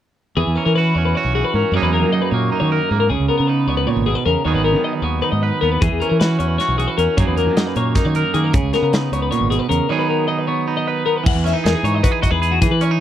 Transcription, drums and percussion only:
5.82 kick loud
5.82 closed hi-hat medium
6.02 closed hi-hat soft
6.21 snare medium
6.21 closed hi-hat medium
6.40 closed hi-hat medium
6.60 snare soft
6.60 closed hi-hat medium
6.80 closed hi-hat soft
6.99 closed hi-hat medium
7.18 kick loud
7.18 closed hi-hat medium
7.38 closed hi-hat medium
7.57 snare medium
7.57 closed hi-hat medium
7.76 closed hi-hat medium
7.95 kick medium
7.95 snare soft
7.95 closed hi-hat medium
8.15 closed hi-hat medium
8.34 closed hi-hat medium
8.54 kick loud
8.54 closed hi-hat medium
8.73 snare soft
8.73 closed hi-hat medium
8.93 snare medium
8.93 closed hi-hat medium
9.13 closed hi-hat medium
9.32 closed hi-hat medium
9.52 closed hi-hat soft
9.71 closed hi-hat medium
11.26 kick loud
11.26 crash loud
11.47 snare soft
11.47 closed hi-hat medium
11.66 snare loud
11.66 closed hi-hat medium
11.85 closed hi-hat medium
12.04 kick loud
12.04 closed hi-hat medium
12.23 kick medium
12.23 closed hi-hat medium
12.43 closed hi-hat medium
12.62 kick loud
12.62 closed hi-hat medium
12.81 closed hi-hat medium

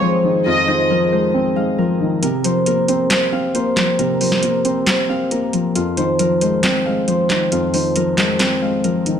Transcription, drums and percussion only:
2.23 closed hi-hat medium
2.44 closed hi-hat medium
2.66 closed hi-hat medium
2.88 closed hi-hat medium
3.10 snare loud
3.10 clap medium
3.10 closed hi-hat medium
3.55 closed hi-hat medium
3.77 snare medium
3.77 clap medium
3.77 closed hi-hat medium
3.99 closed hi-hat medium
4.21 open hi-hat medium
4.32 snare medium
4.43 closed hi-hat medium
4.65 closed hi-hat medium
4.87 snare loud
4.87 clap medium
4.87 closed hi-hat medium
5.31 closed hi-hat medium
5.53 closed hi-hat medium
5.75 closed hi-hat medium
5.97 closed hi-hat medium
6.19 closed hi-hat medium
6.41 closed hi-hat medium
6.63 snare loud
6.63 clap medium
6.63 closed hi-hat medium
7.08 closed hi-hat medium
7.30 snare medium
7.30 clap medium
7.30 closed hi-hat medium
7.52 closed hi-hat medium
7.74 open hi-hat medium
7.96 closed hi-hat medium
8.18 snare loud
8.18 clap medium
8.18 closed hi-hat medium
8.39 snare loud
8.39 clap medium
8.39 closed hi-hat medium
8.84 closed hi-hat medium
9.06 closed hi-hat medium

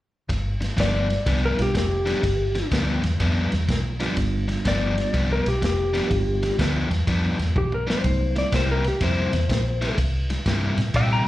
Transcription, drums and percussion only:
0.29 kick medium
0.29 snare soft
0.29 ride medium
0.62 snare soft
0.62 ride medium
0.78 kick medium
0.78 snare loud
0.78 ride medium
1.10 snare soft
1.10 ride medium
1.26 kick medium
1.26 ride medium
1.59 snare soft
1.59 ride medium
1.75 kick medium
1.75 snare loud
1.75 ride medium
2.07 snare soft
2.07 ride medium
2.23 kick medium
2.23 snare soft
2.23 ride medium
2.55 snare soft
2.55 ride medium
2.71 kick medium
2.71 snare loud
2.71 ride medium
3.04 snare soft
3.04 ride medium
3.20 kick medium
3.20 ride medium
3.52 snare soft
3.52 ride medium
3.69 kick medium
3.69 snare loud
3.69 ride medium
4.00 snare soft
4.00 ride medium
4.17 kick medium
4.17 snare soft
4.17 ride medium
4.49 snare soft
4.49 ride medium
4.65 kick medium
4.65 snare loud
4.65 ride medium
4.98 snare soft
4.98 ride medium
5.14 kick medium
5.14 ride medium
5.46 snare soft
5.46 ride medium
5.62 kick medium
5.62 snare loud
5.62 ride medium
5.95 snare soft
5.95 ride medium
6.11 kick medium
6.11 ride medium
6.43 snare soft
6.43 ride medium
6.59 kick medium
6.59 snare loud
6.59 ride medium
6.91 snare soft
6.91 ride medium
7.07 kick medium
7.07 ride medium
7.39 snare soft
7.39 ride medium
7.56 kick medium
7.56 high tom medium
7.72 mid tom medium
7.90 snare medium
8.04 kick medium
8.04 ride medium
8.36 snare soft
8.36 ride medium
8.52 kick medium
8.52 snare loud
8.52 ride medium
8.84 snare soft
8.84 ride medium
9.01 kick medium
9.01 ride medium
9.33 snare soft
9.33 ride medium
9.49 kick medium
9.49 snare loud
9.49 ride medium
9.82 snare soft
9.82 ride medium
9.98 kick medium
9.98 ride medium
10.30 snare soft
10.30 ride medium
10.46 kick medium
10.46 snare loud
10.46 ride medium
10.78 snare soft
10.78 ride medium
10.94 kick medium
10.94 ride medium

